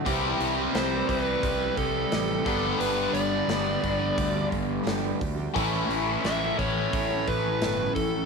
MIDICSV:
0, 0, Header, 1, 7, 480
1, 0, Start_track
1, 0, Tempo, 687285
1, 38, Time_signature, 4, 2, 24, 8
1, 5765, End_track
2, 0, Start_track
2, 0, Title_t, "Lead electric guitar"
2, 0, Program_c, 0, 29
2, 521, Note_on_c, 0, 72, 82
2, 743, Note_off_c, 0, 72, 0
2, 762, Note_on_c, 0, 72, 93
2, 839, Note_off_c, 0, 72, 0
2, 839, Note_on_c, 0, 71, 93
2, 1238, Note_off_c, 0, 71, 0
2, 1241, Note_on_c, 0, 69, 81
2, 1952, Note_off_c, 0, 69, 0
2, 1955, Note_on_c, 0, 71, 91
2, 2180, Note_off_c, 0, 71, 0
2, 2189, Note_on_c, 0, 74, 77
2, 3126, Note_off_c, 0, 74, 0
2, 4371, Note_on_c, 0, 76, 87
2, 4588, Note_off_c, 0, 76, 0
2, 4599, Note_on_c, 0, 73, 92
2, 5084, Note_on_c, 0, 71, 89
2, 5093, Note_off_c, 0, 73, 0
2, 5533, Note_off_c, 0, 71, 0
2, 5551, Note_on_c, 0, 69, 66
2, 5765, Note_off_c, 0, 69, 0
2, 5765, End_track
3, 0, Start_track
3, 0, Title_t, "Overdriven electric guitar"
3, 0, Program_c, 1, 29
3, 52, Note_on_c, 1, 64, 100
3, 1711, Note_off_c, 1, 64, 0
3, 5765, End_track
4, 0, Start_track
4, 0, Title_t, "Twelve-string acoustic guitar"
4, 0, Program_c, 2, 25
4, 45, Note_on_c, 2, 48, 82
4, 51, Note_on_c, 2, 52, 80
4, 54, Note_on_c, 2, 55, 82
4, 59, Note_on_c, 2, 60, 78
4, 62, Note_on_c, 2, 67, 78
4, 394, Note_off_c, 2, 67, 0
4, 402, Note_off_c, 2, 48, 0
4, 402, Note_on_c, 2, 67, 52
4, 404, Note_off_c, 2, 60, 0
4, 405, Note_off_c, 2, 52, 0
4, 406, Note_off_c, 2, 55, 0
4, 413, Note_on_c, 2, 60, 54
4, 422, Note_on_c, 2, 55, 42
4, 520, Note_off_c, 2, 67, 0
4, 524, Note_off_c, 2, 60, 0
4, 525, Note_off_c, 2, 55, 0
4, 525, Note_on_c, 2, 48, 70
4, 529, Note_on_c, 2, 52, 76
4, 532, Note_on_c, 2, 60, 78
4, 533, Note_on_c, 2, 55, 84
4, 537, Note_on_c, 2, 67, 82
4, 747, Note_off_c, 2, 52, 0
4, 756, Note_on_c, 2, 52, 58
4, 759, Note_off_c, 2, 55, 0
4, 762, Note_off_c, 2, 48, 0
4, 765, Note_off_c, 2, 60, 0
4, 766, Note_off_c, 2, 67, 0
4, 767, Note_on_c, 2, 55, 54
4, 774, Note_on_c, 2, 67, 58
4, 777, Note_on_c, 2, 60, 58
4, 997, Note_off_c, 2, 52, 0
4, 1003, Note_off_c, 2, 55, 0
4, 1006, Note_off_c, 2, 67, 0
4, 1007, Note_on_c, 2, 52, 57
4, 1008, Note_off_c, 2, 60, 0
4, 1019, Note_on_c, 2, 55, 59
4, 1019, Note_on_c, 2, 60, 60
4, 1024, Note_on_c, 2, 67, 63
4, 1111, Note_off_c, 2, 67, 0
4, 1119, Note_on_c, 2, 67, 51
4, 1123, Note_off_c, 2, 52, 0
4, 1127, Note_off_c, 2, 60, 0
4, 1129, Note_off_c, 2, 55, 0
4, 1135, Note_on_c, 2, 60, 48
4, 1138, Note_on_c, 2, 55, 49
4, 1468, Note_off_c, 2, 55, 0
4, 1468, Note_on_c, 2, 48, 68
4, 1470, Note_off_c, 2, 60, 0
4, 1475, Note_on_c, 2, 52, 75
4, 1476, Note_off_c, 2, 67, 0
4, 1477, Note_on_c, 2, 55, 75
4, 1479, Note_on_c, 2, 60, 85
4, 1484, Note_on_c, 2, 67, 92
4, 1698, Note_off_c, 2, 55, 0
4, 1703, Note_off_c, 2, 52, 0
4, 1706, Note_on_c, 2, 55, 55
4, 1713, Note_off_c, 2, 48, 0
4, 1714, Note_on_c, 2, 59, 58
4, 1717, Note_off_c, 2, 67, 0
4, 1719, Note_off_c, 2, 60, 0
4, 1723, Note_on_c, 2, 62, 50
4, 1726, Note_on_c, 2, 67, 57
4, 1827, Note_off_c, 2, 67, 0
4, 1832, Note_off_c, 2, 55, 0
4, 1834, Note_off_c, 2, 62, 0
4, 1836, Note_off_c, 2, 59, 0
4, 1836, Note_on_c, 2, 67, 49
4, 1843, Note_on_c, 2, 62, 45
4, 1850, Note_on_c, 2, 59, 44
4, 1859, Note_on_c, 2, 55, 39
4, 1944, Note_on_c, 2, 43, 72
4, 1947, Note_off_c, 2, 55, 0
4, 1949, Note_off_c, 2, 59, 0
4, 1951, Note_off_c, 2, 62, 0
4, 1952, Note_off_c, 2, 67, 0
4, 1956, Note_on_c, 2, 50, 70
4, 1956, Note_on_c, 2, 55, 67
4, 1957, Note_on_c, 2, 59, 67
4, 1960, Note_on_c, 2, 62, 76
4, 1960, Note_on_c, 2, 67, 80
4, 2301, Note_off_c, 2, 67, 0
4, 2308, Note_off_c, 2, 62, 0
4, 2309, Note_on_c, 2, 67, 54
4, 2311, Note_off_c, 2, 43, 0
4, 2315, Note_off_c, 2, 59, 0
4, 2317, Note_off_c, 2, 50, 0
4, 2317, Note_off_c, 2, 55, 0
4, 2317, Note_on_c, 2, 62, 49
4, 2324, Note_on_c, 2, 59, 48
4, 2331, Note_on_c, 2, 55, 41
4, 2425, Note_off_c, 2, 55, 0
4, 2427, Note_on_c, 2, 43, 69
4, 2430, Note_off_c, 2, 59, 0
4, 2431, Note_off_c, 2, 62, 0
4, 2431, Note_off_c, 2, 67, 0
4, 2433, Note_on_c, 2, 50, 78
4, 2434, Note_on_c, 2, 55, 74
4, 2439, Note_on_c, 2, 59, 74
4, 2440, Note_on_c, 2, 62, 67
4, 2440, Note_on_c, 2, 67, 76
4, 2655, Note_off_c, 2, 55, 0
4, 2662, Note_off_c, 2, 59, 0
4, 2664, Note_on_c, 2, 55, 59
4, 2670, Note_on_c, 2, 59, 54
4, 2671, Note_off_c, 2, 62, 0
4, 2673, Note_off_c, 2, 43, 0
4, 2676, Note_off_c, 2, 50, 0
4, 2676, Note_off_c, 2, 67, 0
4, 2679, Note_on_c, 2, 62, 55
4, 2684, Note_on_c, 2, 67, 59
4, 2772, Note_off_c, 2, 67, 0
4, 2779, Note_off_c, 2, 62, 0
4, 2781, Note_on_c, 2, 67, 46
4, 2783, Note_off_c, 2, 59, 0
4, 2788, Note_on_c, 2, 62, 46
4, 2791, Note_off_c, 2, 55, 0
4, 2792, Note_on_c, 2, 59, 42
4, 2798, Note_on_c, 2, 55, 37
4, 2886, Note_off_c, 2, 55, 0
4, 2891, Note_off_c, 2, 59, 0
4, 2895, Note_on_c, 2, 55, 60
4, 2897, Note_off_c, 2, 62, 0
4, 2899, Note_on_c, 2, 59, 61
4, 2905, Note_off_c, 2, 67, 0
4, 2905, Note_on_c, 2, 62, 65
4, 2913, Note_on_c, 2, 67, 74
4, 3006, Note_off_c, 2, 67, 0
4, 3015, Note_off_c, 2, 62, 0
4, 3015, Note_on_c, 2, 67, 55
4, 3021, Note_off_c, 2, 59, 0
4, 3024, Note_on_c, 2, 62, 57
4, 3027, Note_off_c, 2, 55, 0
4, 3029, Note_on_c, 2, 59, 54
4, 3038, Note_on_c, 2, 55, 52
4, 3372, Note_off_c, 2, 55, 0
4, 3374, Note_off_c, 2, 59, 0
4, 3375, Note_on_c, 2, 43, 87
4, 3376, Note_off_c, 2, 62, 0
4, 3379, Note_off_c, 2, 67, 0
4, 3379, Note_on_c, 2, 50, 77
4, 3380, Note_on_c, 2, 55, 90
4, 3382, Note_on_c, 2, 59, 91
4, 3385, Note_on_c, 2, 62, 84
4, 3387, Note_on_c, 2, 67, 85
4, 3608, Note_off_c, 2, 55, 0
4, 3617, Note_on_c, 2, 55, 57
4, 3621, Note_off_c, 2, 59, 0
4, 3626, Note_off_c, 2, 43, 0
4, 3626, Note_off_c, 2, 62, 0
4, 3628, Note_off_c, 2, 50, 0
4, 3629, Note_on_c, 2, 59, 53
4, 3633, Note_off_c, 2, 67, 0
4, 3635, Note_on_c, 2, 62, 61
4, 3640, Note_on_c, 2, 67, 67
4, 3736, Note_off_c, 2, 67, 0
4, 3741, Note_off_c, 2, 62, 0
4, 3744, Note_on_c, 2, 67, 50
4, 3747, Note_off_c, 2, 55, 0
4, 3748, Note_off_c, 2, 59, 0
4, 3749, Note_on_c, 2, 62, 47
4, 3756, Note_on_c, 2, 59, 45
4, 3766, Note_on_c, 2, 55, 42
4, 3867, Note_on_c, 2, 45, 79
4, 3868, Note_off_c, 2, 55, 0
4, 3871, Note_off_c, 2, 67, 0
4, 3871, Note_on_c, 2, 52, 85
4, 3872, Note_off_c, 2, 59, 0
4, 3874, Note_off_c, 2, 62, 0
4, 3874, Note_on_c, 2, 57, 84
4, 3878, Note_on_c, 2, 61, 77
4, 3882, Note_on_c, 2, 69, 82
4, 4222, Note_off_c, 2, 69, 0
4, 4231, Note_on_c, 2, 69, 47
4, 4233, Note_off_c, 2, 45, 0
4, 4234, Note_off_c, 2, 52, 0
4, 4234, Note_off_c, 2, 61, 0
4, 4236, Note_off_c, 2, 57, 0
4, 4243, Note_on_c, 2, 61, 44
4, 4250, Note_on_c, 2, 57, 37
4, 4354, Note_off_c, 2, 69, 0
4, 4357, Note_off_c, 2, 57, 0
4, 4358, Note_on_c, 2, 45, 72
4, 4358, Note_on_c, 2, 52, 67
4, 4360, Note_off_c, 2, 61, 0
4, 4366, Note_on_c, 2, 57, 63
4, 4369, Note_on_c, 2, 61, 69
4, 4373, Note_on_c, 2, 69, 87
4, 4581, Note_off_c, 2, 52, 0
4, 4590, Note_on_c, 2, 52, 57
4, 4593, Note_off_c, 2, 57, 0
4, 4598, Note_off_c, 2, 45, 0
4, 4600, Note_off_c, 2, 69, 0
4, 4601, Note_on_c, 2, 57, 57
4, 4604, Note_off_c, 2, 61, 0
4, 4611, Note_on_c, 2, 61, 62
4, 4826, Note_off_c, 2, 52, 0
4, 4834, Note_on_c, 2, 52, 53
4, 4838, Note_off_c, 2, 57, 0
4, 4844, Note_off_c, 2, 61, 0
4, 4846, Note_on_c, 2, 57, 55
4, 4854, Note_on_c, 2, 61, 57
4, 4854, Note_on_c, 2, 69, 62
4, 4953, Note_off_c, 2, 69, 0
4, 4956, Note_off_c, 2, 52, 0
4, 4961, Note_on_c, 2, 69, 55
4, 4962, Note_off_c, 2, 57, 0
4, 4963, Note_off_c, 2, 61, 0
4, 4972, Note_on_c, 2, 61, 42
4, 4984, Note_on_c, 2, 57, 43
4, 5316, Note_off_c, 2, 57, 0
4, 5318, Note_on_c, 2, 45, 74
4, 5320, Note_off_c, 2, 69, 0
4, 5324, Note_on_c, 2, 57, 77
4, 5325, Note_off_c, 2, 61, 0
4, 5325, Note_on_c, 2, 52, 80
4, 5334, Note_on_c, 2, 61, 80
4, 5334, Note_on_c, 2, 69, 86
4, 5552, Note_off_c, 2, 52, 0
4, 5558, Note_off_c, 2, 45, 0
4, 5559, Note_off_c, 2, 57, 0
4, 5560, Note_on_c, 2, 52, 50
4, 5566, Note_off_c, 2, 61, 0
4, 5566, Note_off_c, 2, 69, 0
4, 5568, Note_on_c, 2, 57, 57
4, 5577, Note_on_c, 2, 69, 57
4, 5578, Note_on_c, 2, 61, 59
4, 5672, Note_off_c, 2, 69, 0
4, 5679, Note_off_c, 2, 52, 0
4, 5680, Note_on_c, 2, 69, 42
4, 5682, Note_off_c, 2, 61, 0
4, 5683, Note_off_c, 2, 57, 0
4, 5690, Note_on_c, 2, 61, 42
4, 5696, Note_on_c, 2, 57, 38
4, 5765, Note_off_c, 2, 57, 0
4, 5765, Note_off_c, 2, 61, 0
4, 5765, Note_off_c, 2, 69, 0
4, 5765, End_track
5, 0, Start_track
5, 0, Title_t, "Overdriven electric guitar"
5, 0, Program_c, 3, 29
5, 1712, Note_on_c, 3, 43, 71
5, 1717, Note_on_c, 3, 50, 86
5, 3620, Note_off_c, 3, 43, 0
5, 3623, Note_off_c, 3, 50, 0
5, 3893, Note_on_c, 3, 64, 86
5, 5765, Note_off_c, 3, 64, 0
5, 5765, End_track
6, 0, Start_track
6, 0, Title_t, "Fingered electric bass"
6, 0, Program_c, 4, 33
6, 45, Note_on_c, 4, 36, 78
6, 225, Note_off_c, 4, 36, 0
6, 282, Note_on_c, 4, 36, 81
6, 463, Note_off_c, 4, 36, 0
6, 521, Note_on_c, 4, 36, 86
6, 703, Note_off_c, 4, 36, 0
6, 760, Note_on_c, 4, 36, 85
6, 943, Note_off_c, 4, 36, 0
6, 1000, Note_on_c, 4, 36, 91
6, 1182, Note_off_c, 4, 36, 0
6, 1241, Note_on_c, 4, 36, 75
6, 1423, Note_off_c, 4, 36, 0
6, 1487, Note_on_c, 4, 33, 81
6, 1667, Note_off_c, 4, 33, 0
6, 1721, Note_on_c, 4, 31, 78
6, 1903, Note_off_c, 4, 31, 0
6, 1960, Note_on_c, 4, 31, 81
6, 2142, Note_off_c, 4, 31, 0
6, 2188, Note_on_c, 4, 31, 83
6, 2375, Note_off_c, 4, 31, 0
6, 2431, Note_on_c, 4, 31, 87
6, 2617, Note_off_c, 4, 31, 0
6, 2680, Note_on_c, 4, 31, 82
6, 2862, Note_off_c, 4, 31, 0
6, 2921, Note_on_c, 4, 38, 81
6, 3103, Note_off_c, 4, 38, 0
6, 3160, Note_on_c, 4, 31, 76
6, 3342, Note_off_c, 4, 31, 0
6, 3397, Note_on_c, 4, 31, 75
6, 3580, Note_off_c, 4, 31, 0
6, 3642, Note_on_c, 4, 38, 78
6, 3824, Note_off_c, 4, 38, 0
6, 3882, Note_on_c, 4, 33, 81
6, 4064, Note_off_c, 4, 33, 0
6, 4113, Note_on_c, 4, 33, 78
6, 4298, Note_off_c, 4, 33, 0
6, 4358, Note_on_c, 4, 33, 75
6, 4541, Note_off_c, 4, 33, 0
6, 4600, Note_on_c, 4, 33, 78
6, 4782, Note_off_c, 4, 33, 0
6, 4839, Note_on_c, 4, 33, 88
6, 5022, Note_off_c, 4, 33, 0
6, 5083, Note_on_c, 4, 33, 67
6, 5264, Note_off_c, 4, 33, 0
6, 5315, Note_on_c, 4, 31, 71
6, 5499, Note_off_c, 4, 31, 0
6, 5560, Note_on_c, 4, 33, 77
6, 5742, Note_off_c, 4, 33, 0
6, 5765, End_track
7, 0, Start_track
7, 0, Title_t, "Drums"
7, 44, Note_on_c, 9, 36, 113
7, 48, Note_on_c, 9, 46, 65
7, 114, Note_off_c, 9, 36, 0
7, 118, Note_off_c, 9, 46, 0
7, 283, Note_on_c, 9, 46, 44
7, 353, Note_off_c, 9, 46, 0
7, 523, Note_on_c, 9, 46, 52
7, 526, Note_on_c, 9, 38, 92
7, 593, Note_off_c, 9, 46, 0
7, 596, Note_off_c, 9, 38, 0
7, 761, Note_on_c, 9, 36, 69
7, 764, Note_on_c, 9, 46, 46
7, 831, Note_off_c, 9, 36, 0
7, 834, Note_off_c, 9, 46, 0
7, 1000, Note_on_c, 9, 36, 102
7, 1001, Note_on_c, 9, 46, 65
7, 1070, Note_off_c, 9, 36, 0
7, 1071, Note_off_c, 9, 46, 0
7, 1238, Note_on_c, 9, 46, 47
7, 1240, Note_on_c, 9, 36, 72
7, 1308, Note_off_c, 9, 46, 0
7, 1309, Note_off_c, 9, 36, 0
7, 1479, Note_on_c, 9, 46, 64
7, 1483, Note_on_c, 9, 38, 92
7, 1549, Note_off_c, 9, 46, 0
7, 1553, Note_off_c, 9, 38, 0
7, 1718, Note_on_c, 9, 36, 93
7, 1720, Note_on_c, 9, 46, 49
7, 1788, Note_off_c, 9, 36, 0
7, 1790, Note_off_c, 9, 46, 0
7, 1959, Note_on_c, 9, 46, 73
7, 2029, Note_off_c, 9, 46, 0
7, 2197, Note_on_c, 9, 46, 48
7, 2267, Note_off_c, 9, 46, 0
7, 2439, Note_on_c, 9, 46, 62
7, 2442, Note_on_c, 9, 38, 90
7, 2509, Note_off_c, 9, 46, 0
7, 2512, Note_off_c, 9, 38, 0
7, 2679, Note_on_c, 9, 36, 72
7, 2680, Note_on_c, 9, 46, 42
7, 2749, Note_off_c, 9, 36, 0
7, 2750, Note_off_c, 9, 46, 0
7, 2918, Note_on_c, 9, 46, 64
7, 2919, Note_on_c, 9, 36, 112
7, 2988, Note_off_c, 9, 46, 0
7, 2989, Note_off_c, 9, 36, 0
7, 3158, Note_on_c, 9, 46, 40
7, 3159, Note_on_c, 9, 36, 65
7, 3228, Note_off_c, 9, 46, 0
7, 3229, Note_off_c, 9, 36, 0
7, 3400, Note_on_c, 9, 46, 59
7, 3404, Note_on_c, 9, 38, 94
7, 3470, Note_off_c, 9, 46, 0
7, 3473, Note_off_c, 9, 38, 0
7, 3641, Note_on_c, 9, 36, 80
7, 3641, Note_on_c, 9, 46, 43
7, 3711, Note_off_c, 9, 36, 0
7, 3711, Note_off_c, 9, 46, 0
7, 3883, Note_on_c, 9, 36, 105
7, 3885, Note_on_c, 9, 46, 65
7, 3953, Note_off_c, 9, 36, 0
7, 3955, Note_off_c, 9, 46, 0
7, 4125, Note_on_c, 9, 46, 44
7, 4195, Note_off_c, 9, 46, 0
7, 4362, Note_on_c, 9, 46, 50
7, 4366, Note_on_c, 9, 38, 91
7, 4432, Note_off_c, 9, 46, 0
7, 4436, Note_off_c, 9, 38, 0
7, 4602, Note_on_c, 9, 36, 73
7, 4605, Note_on_c, 9, 46, 41
7, 4672, Note_off_c, 9, 36, 0
7, 4674, Note_off_c, 9, 46, 0
7, 4841, Note_on_c, 9, 46, 62
7, 4842, Note_on_c, 9, 36, 109
7, 4911, Note_off_c, 9, 46, 0
7, 4912, Note_off_c, 9, 36, 0
7, 5080, Note_on_c, 9, 46, 43
7, 5082, Note_on_c, 9, 36, 70
7, 5150, Note_off_c, 9, 46, 0
7, 5152, Note_off_c, 9, 36, 0
7, 5319, Note_on_c, 9, 46, 65
7, 5322, Note_on_c, 9, 38, 96
7, 5389, Note_off_c, 9, 46, 0
7, 5392, Note_off_c, 9, 38, 0
7, 5560, Note_on_c, 9, 36, 76
7, 5560, Note_on_c, 9, 46, 47
7, 5630, Note_off_c, 9, 36, 0
7, 5630, Note_off_c, 9, 46, 0
7, 5765, End_track
0, 0, End_of_file